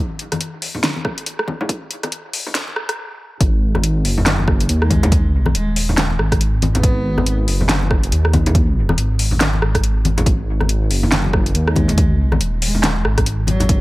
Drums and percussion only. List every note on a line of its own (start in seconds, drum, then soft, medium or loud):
0.19 closed hi-hat soft
0.32 cross-stick medium
0.32 closed hi-hat soft
0.32 high conga medium
0.41 closed hi-hat medium
0.62 open hi-hat medium
0.75 low conga medium
0.84 snare loud
0.84 closed hi-hat medium
0.96 high conga medium
1.05 kick loud
1.05 cross-stick medium
1.18 closed hi-hat medium
1.26 closed hi-hat medium
1.39 cross-stick medium
1.48 kick medium
1.48 high conga medium
1.61 low conga loud
1.69 kick loud
1.69 closed hi-hat medium
1.91 closed hi-hat medium
2.03 cross-stick medium
2.03 closed hi-hat soft
2.03 high conga loud
2.12 closed hi-hat medium
2.33 open hi-hat medium
2.46 low conga medium
2.55 snare loud
2.55 closed hi-hat medium
2.68 high conga medium
2.76 cross-stick medium
2.89 cross-stick medium
2.89 closed hi-hat medium
3.41 kick loud
3.41 closed hi-hat medium
3.75 cross-stick medium
3.75 high conga medium
3.84 closed hi-hat medium
4.05 open hi-hat medium
4.18 low conga medium
4.26 snare loud
4.26 clap medium
4.26 closed hi-hat medium
4.39 high conga medium
4.48 kick loud
4.48 cross-stick medium
4.60 closed hi-hat medium
4.69 closed hi-hat medium
4.82 cross-stick medium
4.90 kick medium
4.90 closed hi-hat medium
4.90 high conga medium
5.03 closed hi-hat medium
5.03 low conga loud
5.12 kick loud
5.12 closed hi-hat medium
5.46 cross-stick soft
5.46 high conga loud
5.55 closed hi-hat medium
5.76 open hi-hat medium
5.89 low conga medium
5.98 snare loud
5.98 clap medium
5.98 closed hi-hat medium
6.10 high conga medium
6.19 cross-stick medium
6.32 kick medium
6.32 cross-stick medium
6.32 closed hi-hat medium
6.41 closed hi-hat medium
6.62 closed hi-hat medium
6.62 high conga medium
6.75 closed hi-hat medium
6.75 low conga loud
6.83 kick loud
6.83 closed hi-hat medium
7.18 cross-stick medium
7.18 high conga loud
7.26 closed hi-hat medium
7.48 open hi-hat medium
7.61 low conga medium
7.69 snare loud
7.69 clap medium
7.69 closed hi-hat medium
7.82 high conga medium
7.91 kick loud
7.91 cross-stick medium
8.03 closed hi-hat medium
8.12 closed hi-hat medium
8.25 cross-stick medium
8.33 kick medium
8.33 closed hi-hat medium
8.33 high conga loud
8.46 closed hi-hat medium
8.46 low conga loud
8.55 kick loud
8.55 closed hi-hat medium
8.89 cross-stick medium
8.89 high conga loud
8.98 closed hi-hat medium
9.19 open hi-hat medium
9.31 low conga medium
9.41 snare loud
9.41 clap medium
9.41 closed hi-hat medium
9.53 high conga medium
9.62 cross-stick medium
9.75 kick medium
9.75 cross-stick medium
9.75 closed hi-hat medium
9.84 closed hi-hat medium
10.05 closed hi-hat soft
10.05 high conga loud
10.18 closed hi-hat medium
10.18 low conga loud
10.26 kick loud
10.26 closed hi-hat medium
10.61 cross-stick medium
10.61 high conga medium
10.69 closed hi-hat medium
10.91 open hi-hat medium
11.03 low conga medium
11.12 snare loud
11.12 clap medium
11.12 closed hi-hat medium
11.25 high conga medium
11.33 kick loud
11.33 cross-stick medium
11.46 closed hi-hat soft
11.55 closed hi-hat medium
11.68 cross-stick medium
11.76 kick medium
11.76 closed hi-hat soft
11.76 high conga medium
11.88 closed hi-hat medium
11.88 low conga medium
11.98 kick loud
11.98 closed hi-hat medium
12.32 cross-stick medium
12.32 high conga medium
12.41 closed hi-hat medium
12.62 open hi-hat loud
12.75 low conga medium
12.84 snare loud
12.84 clap medium
12.84 closed hi-hat medium
12.96 high conga medium
13.05 cross-stick medium
13.18 kick medium
13.18 cross-stick medium
13.18 closed hi-hat medium
13.26 closed hi-hat medium
13.47 closed hi-hat medium
13.47 high conga medium
13.60 closed hi-hat medium
13.60 low conga medium
13.69 kick loud
13.69 closed hi-hat medium